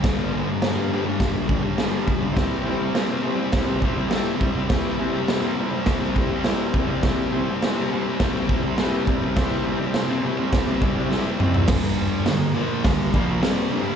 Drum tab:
CC |x---x---x---x---|x---x---x---x---|x---x---x---x---|x---x---x---x---|
HH |----------------|----------------|----------------|----------------|
SD |o---o---o---o---|o---o---o---o---|o---o---o---o---|o---o---o---o---|
T2 |----------------|----------------|----------------|----------------|
FT |----------------|----------------|----------------|----------------|
BD |o-------o-o---o-|o-------o-o---o-|o-------o-o---o-|o-------o-o---o-|

CC |x---x---x-------|x---------------|
HH |----------------|----o---o---o---|
SD |o---o---o---o---|o---o---o---o---|
T2 |--------------o-|----------------|
FT |---------------o|----------------|
BD |o-------o-o-----|o-------o-o-----|